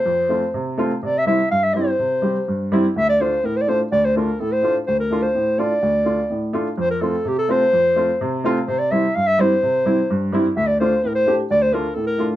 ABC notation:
X:1
M:2/4
L:1/16
Q:1/4=126
K:Dm
V:1 name="Clarinet"
c6 z2 | d e e2 f e c2- | c6 z2 | e d c2 B c/2 d/2 c z |
d c B2 A c2 z | c B2 c3 d2- | d6 z2 | c B A2 G A c2- |
c6 z2 | c d e2 f e c2- | c6 z2 | e d c2 B c2 z |
d c B2 A B2 z |]
V:2 name="Upright piano"
z2 [A,CF] z3 [A,CF] z | z2 [G,CE] z3 [G,CE] z | z2 [G,CG] z3 [G,CE] z | z2 [A,DF] z3 [A,DF] z |
z2 [A,DF] z3 [A,DF] z | z2 [A,DF] z3 [A,DF] z | z2 [A,DF] z3 [A,DF] z | z2 [A,CF] z3 [A,CF] z |
z2 [A,CF] z3 [A,CF] z | z2 [G,CE] z3 [G,CE] z | z2 [G,CE] z3 [G,CE] z | z2 [A,DF] z3 [A,DG] z |
z2 [A,DF] z3 [A,DF] z |]
V:3 name="Upright piano" clef=bass
F,,4 C,4 | C,4 G,,4 | C,4 G,,4 | D,,4 A,,4 |
D,,4 A,,4 | D,,4 A,,4 | D,,4 A,,4 | F,,4 C,4 |
F,,4 C,4 | C,4 G,,4 | C,4 G,,4 | D,,4 A,,4 |
D,,4 A,,4 |]